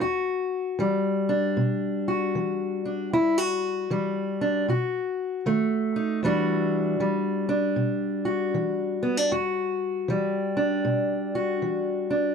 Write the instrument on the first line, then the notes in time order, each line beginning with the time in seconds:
steel-string acoustic guitar
0.00 E2 F#4
0.79 E3 G3
1.29 D4
1.57 B2
2.08 F#4
2.35 E3
2.85 D4
3.13 E2 E4
3.38 F#4
3.90 E3 G3
4.41 D4
4.68 B2 F#4
5.46 D#3 A3
5.96 D#4
6.23 E2 E3 G3 D4 F#4
7.00 E3 G3
7.49 D4
7.76 B2
8.25 F#4
8.54 E3
9.03 B3
9.17 D4
9.31 E2 F#4
10.08 E3 G3
10.57 D4
10.85 B2
11.35 F#4
11.62 E3
12.10 D4